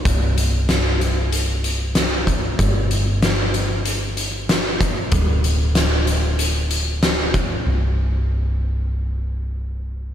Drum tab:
HH |xxxxxxxx|xxxxxxxx|xxxxxxxx|--------|
SD |--o---o-|--o---o-|--o---o-|--------|
BD |o------o|o------o|o------o|--------|